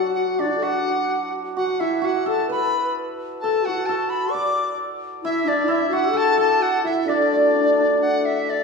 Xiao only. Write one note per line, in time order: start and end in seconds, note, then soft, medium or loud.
0.00 0.12 F#4 medium
0.17 0.43 F#4 medium
0.41 0.58 D4 medium
0.56 0.65 A4 medium
0.64 1.33 F#4 medium
1.57 1.82 F#4 medium
1.81 2.04 E4 medium
2.04 2.29 F#4 medium
2.28 2.50 A4 medium
2.48 2.95 B4 medium
3.42 3.64 A4 medium
3.63 3.70 F#4 medium
3.69 3.76 E4 medium
3.74 4.31 F#4 medium
4.30 4.76 D5 medium
5.22 5.46 E4 medium
5.45 5.66 D4 medium
5.64 5.88 E4 medium
5.89 6.12 F#4 medium
6.11 6.62 A4 medium
6.60 6.85 F#4 medium
6.84 7.07 E4 medium
7.07 8.46 D4 medium